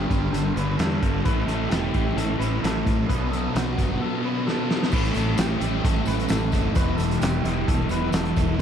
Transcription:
Already playing: G2 D3 G3 B3 D4 G4
0.08 G1 G2 D3 G3, kick, closed hi-hat
0.31 G1 G2 D3 G3 A4, closed hi-hat
0.56 G1 G2 D3 G3 B3 D4 B4, closed hi-hat
0.78 E2 G2 D3 G3 A4, snare, closed hi-hat
0.82 G3 B3 D4
1.01 G1 G2 D3 G3, kick, closed hi-hat
1.24 A1 A2 E3 G3 A3 C#4 E4 B4, kick, closed hi-hat
1.47 A1 A2 E3 A3 A4, closed hi-hat
1.69 E1 A2 E3 A3 G4, snare, closed hi-hat
1.93 A1 A2 E3 A3, kick, closed hi-hat
2.16 A1 A2 E3 A3 A4, closed hi-hat
2.38 A1 A2 E3 G3 A3 C#4 E4 B4, closed hi-hat
2.61 A1 A2 E3 G3 A3 C#4 E4 A4, snare, closed hi-hat
2.84 A1 A2 E3 A3, kick, closed hi-hat
3.07 B1 B2 F#3 B3 D4 B4, kick, closed hi-hat
3.31 B2 F#3 B3 A4, closed hi-hat
3.53 B1 B2 F#3 B3 F#4, snare, closed hi-hat
3.76 G1 B2 F#3 B3, kick, closed hi-hat
4.00 B2 F#3 B3 A4
4.22 B2 F#3 B3 D4 B4
4.46 B2 F#3 B3 D4 A4, snare
4.68 B2 F#3 B3, snare
4.83 snare
4.90 A1 A2 E3 G3 C#4 B4, kick, crash, tambourine
4.94 A3 E4
5.05 closed hi-hat
5.14 A1 A3 A4, closed hi-hat, tambourine
5.18 E3
5.37 A1 A2 E3 G4, snare, closed hi-hat, tambourine
5.42 A3
5.59 A1 E3 A3, closed hi-hat, tambourine
5.63 A2
5.84 A1 A4, kick, closed hi-hat
6.06 A1 B4, closed hi-hat, tambourine
6.20 closed hi-hat
6.28 A1 A2 E3 A4, snare, closed hi-hat, tambourine
6.33 A3
6.52 F#1 A2 E3 G3 A3 C#4 E4, kick, closed hi-hat, tambourine
6.73 E1 E2 B2 E3 G3 B3 B4, kick, closed hi-hat, tambourine
6.77 E3 E4
6.96 E1 E3 A4, closed hi-hat, tambourine
7.02 B2
7.11 closed hi-hat
7.20 E1 E2 B2 G4, snare, closed hi-hat, tambourine
7.24 E3
7.42 E1 B2 E3, closed hi-hat, tambourine
7.47 E2
7.68 E1 A4, kick, closed hi-hat
7.89 E1 B4, closed hi-hat, tambourine
8.11 E1 E2 B2 E3 A4, snare, closed hi-hat, tambourine
8.25 closed hi-hat
8.36 E1 B2 E3 G3 B3 E4, kick, closed hi-hat, tambourine
8.58 C3

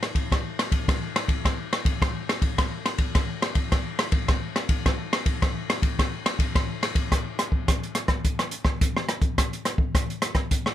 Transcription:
0.03 cross-stick, ride
0.15 kick, ride
0.32 kick, cross-stick, ride
0.59 cross-stick, ride
0.72 kick, ride
0.88 kick, cross-stick, ride
1.16 cross-stick, ride
1.28 kick, ride
1.45 kick, cross-stick, ride
1.73 cross-stick, ride
1.85 kick, ride
2.02 kick, cross-stick, ride
2.29 cross-stick, ride
2.42 kick, ride
2.58 kick, cross-stick, ride
2.86 cross-stick, ride
2.98 kick, ride
3.15 kick, cross-stick, ride
3.42 cross-stick, ride
3.55 kick, ride
3.72 kick, cross-stick, ride
3.99 cross-stick, ride
4.12 kick, ride
4.28 kick, cross-stick, ride
4.56 cross-stick, ride
4.69 kick, ride
4.86 kick, cross-stick, ride
5.13 cross-stick, ride
5.26 kick, ride
5.42 kick, cross-stick, ride
5.70 cross-stick, ride
5.82 kick, ride
5.99 kick, cross-stick, ride
6.26 cross-stick, ride
6.39 kick, ride
6.55 kick, cross-stick, ride
6.83 cross-stick, ride
6.95 kick, ride
7.12 kick, cross-stick, closed hi-hat
7.39 cross-stick, closed hi-hat
7.52 kick
7.68 kick, cross-stick, closed hi-hat
7.83 closed hi-hat
7.95 cross-stick, closed hi-hat
8.08 kick, cross-stick, closed hi-hat
8.25 kick, closed hi-hat
8.39 cross-stick, closed hi-hat
8.51 closed hi-hat
8.65 kick, cross-stick
8.81 kick, closed hi-hat
8.97 cross-stick
9.09 cross-stick, closed hi-hat
9.22 kick, closed hi-hat
9.38 kick, cross-stick, closed hi-hat
9.53 closed hi-hat
9.65 cross-stick, closed hi-hat
9.78 kick
9.95 kick, cross-stick, closed hi-hat
10.10 closed hi-hat
10.22 cross-stick, closed hi-hat
10.35 kick, cross-stick, closed hi-hat
10.51 kick, closed hi-hat
10.66 cross-stick

